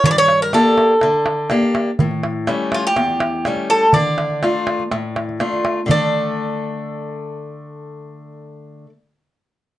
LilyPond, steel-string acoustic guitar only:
\new Staff \with { instrumentName = "Steel-string acoustic guitar" } { \time 4/4 \key d \minor \tempo 4 = 123 g,4 <bes d' g'>4 d4 <bes d' g'>4 | a,4 <g a cis'>4 e,4 <g a cis'>4 | d4 <a d' f'>4 a,4 <a d' f'>4 | <d a d' f' a'>1~ |
<d a d' f' a'>1 | }